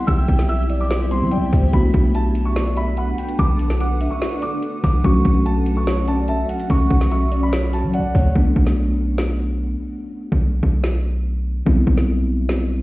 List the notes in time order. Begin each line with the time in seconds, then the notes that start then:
Already playing: G3 B3 C4 E4 G4 E5 G5
0.07 B1 G5 E6, kick, closed hi-hat
0.28 B1, kick, closed hi-hat
0.39 snare
0.49 E5 E6, closed hi-hat
0.70 D5, closed hi-hat
0.81 D6
0.91 C5, snare, closed hi-hat
1.11 G3 B3 C4 E4 C6, closed hi-hat
1.22 F#3
1.31 D5 G5, closed hi-hat
1.37 B1
1.53 D2 C5, kick, open hi-hat
1.73 B1 A3 B3 D4 F#4 A4 B4 F#5 B5, kick, closed hi-hat
1.94 B1, kick, closed hi-hat
2.15 A5, closed hi-hat
2.35 closed hi-hat
2.45 C#6
2.56 D5, snare, closed hi-hat
2.77 E5 B5, closed hi-hat
2.97 F#5 B5, closed hi-hat
3.18 G5, closed hi-hat
3.29 closed hi-hat
3.39 B1 A5 D6, kick, closed hi-hat
3.59 closed hi-hat
3.70 snare
3.80 F#5 D6, closed hi-hat
4.01 E5, closed hi-hat
4.11 C#6
4.22 D5, snare, closed hi-hat
4.42 D6, closed hi-hat
4.62 closed hi-hat
4.84 B1 D6, kick, open hi-hat
5.04 B1 F#3 A3 C#4 F#4 C#6, kick, closed hi-hat
5.25 B1, kick, closed hi-hat
5.46 A5, closed hi-hat
5.66 closed hi-hat
5.77 C#6
5.87 C#5, snare, closed hi-hat
6.08 D5 A5, closed hi-hat
6.28 E5 A5, closed hi-hat
6.49 F#5, closed hi-hat
6.60 closed hi-hat
6.70 B1 F#5 C#6, kick, closed hi-hat
6.90 B1, kick, closed hi-hat
7.01 snare
7.11 E5 C#6, closed hi-hat
7.32 D5, closed hi-hat
7.43 B5
7.53 C#5, snare, closed hi-hat
7.73 A5, closed hi-hat
7.84 F#3
7.94 D5 F#5, closed hi-hat
7.99 B1
8.15 D2 C#5, kick, open hi-hat
8.35 B1 A3 B3 D4, kick
8.56 B1, kick
8.67 snare
9.18 snare
10.32 B1, kick
10.63 B1, kick
10.84 snare
11.66 B1 G3 B3 C4 E4, kick
11.87 B1, kick
11.98 snare
12.49 snare